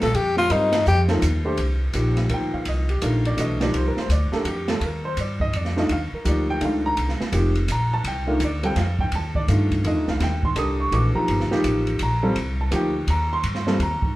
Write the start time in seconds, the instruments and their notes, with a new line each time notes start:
0.01 upright bass A#1, tenor saxophone A4, snare, ride
0.13 upright bass F2, tenor saxophone G4, ride
0.37 tenor saxophone F4, snare
0.50 upright bass G2, grand piano G3 C4 F4 A#4, tenor saxophone D#4, ride
0.72 snare, ride
0.86 upright bass F2, tenor saxophone G4, hi-hat pedal
1.08 grand piano F3 A#3 D#4 A4, snare, ride
1.22 upright bass D#2, hi-hat pedal, ride
1.45 grand piano A3 D4 G4 C5
1.57 upright bass C2, ride
1.93 upright bass A#1, grand piano F3 A#3 D#4 G4, hi-hat pedal, ride
2.16 snare, ride
2.29 upright bass D2, grand piano F3 A#3 D#4 A#4, ride
2.34 grand piano G5
2.53 grand piano F5, muted upright bass stroke
2.65 upright bass C2, grand piano D#5, ride
2.89 grand piano G4, ride
3.02 upright bass A#1, grand piano D#3 A3 D4 F4 A#4, hi-hat pedal, ride
3.25 grand piano D5, ride
3.37 upright bass B1, grand piano E3 A3 D4 F#4 D#5, hi-hat pedal, ride
3.60 grand piano F3 A#3 D#4 G4 D5, snare, ride
3.73 upright bass C2, grand piano C5, ride
3.87 grand piano A#4
3.97 grand piano C5, snare
4.08 upright bass D2, grand piano D5, hi-hat pedal, ride
4.32 grand piano A3 D4 G4 A4 A#4, muted upright bass stroke, snare
4.44 upright bass F2, grand piano F#4, ride
4.48 grand piano G4
4.68 grand piano A4, snare, ride
4.80 upright bass D#2, ride
4.85 grand piano A#4
5.05 grand piano C5
5.17 upright bass G2, grand piano D5, hi-hat pedal, ride
5.40 grand piano D#5, kick
5.52 upright bass F2, ride
5.56 grand piano D5
5.65 snare
5.76 grand piano D#3 A3 D4 F4 D#5, snare
5.89 upright bass D#2, grand piano F5, ride
6.12 grand piano A#4, muted upright bass stroke
6.24 upright bass D2, grand piano F3 A#3 D#4 G4, hi-hat pedal, ride
6.29 grand piano D5
6.50 grand piano G5
6.60 upright bass C#2, grand piano D#3 A3 D4 F4, ride
6.65 grand piano F5
6.86 grand piano A#5
6.97 upright bass C2, ride
7.09 snare
7.20 muted upright bass stroke, snare
7.32 upright bass F1, grand piano F3 A#3 D#4 G4, hi-hat pedal, ride
7.55 ride
7.68 upright bass A#1, grand piano A#5, hi-hat pedal, ride
7.93 grand piano A5
8.04 upright bass C2, grand piano G5, ride
8.27 grand piano D#3 A3 D4 F4 A#4
8.40 upright bass D2, hi-hat pedal, ride
8.45 grand piano D5
8.63 grand piano G3 C4 F4 A4 G5, ride
8.76 upright bass F2, grand piano F5, snare, ride
8.99 grand piano G5, kick
9.12 upright bass D#2, grand piano A5, ride
9.35 grand piano D5, kick
9.48 upright bass G2, grand piano D#3 A3 D4 F4, hi-hat pedal, ride
9.71 kick, ride
9.83 upright bass F2, grand piano D#3 A3 D4 F4 D#5, ride
9.96 upright bass D#2
10.08 upright bass C2, grand piano F5, snare
10.20 upright bass D#2, grand piano G5, snare, ride
10.43 grand piano C6, kick
10.55 upright bass C2, grand piano D4 G4 A4 A#4 D#6, hi-hat pedal, ride
10.80 grand piano C#6
10.91 upright bass A#1, grand piano E3 A3 D4 F#4 D6, ride
11.15 grand piano F3 A#3 D#4 G4 A#5, muted upright bass stroke
11.28 upright bass G1, ride
11.40 snare
11.51 grand piano F3 A#3 D#4 G4, muted upright bass stroke, snare
11.64 upright bass A1, hi-hat pedal, ride
11.87 ride
11.99 upright bass A#1, grand piano A#5, ride
12.23 grand piano G3 C4 F4 A4
12.36 upright bass C2, ride
12.61 grand piano A5
12.71 upright bass D2, grand piano F3 A#3 D#4 G4, hi-hat pedal, ride
12.76 grand piano G5
13.07 upright bass D#2, grand piano A#5, ride
13.33 grand piano C6
13.43 upright bass G2, ride
13.55 snare
13.67 grand piano G3 C4 F4 A4, snare
13.79 upright bass D#2, grand piano A#5, ride
14.02 muted upright bass stroke, kick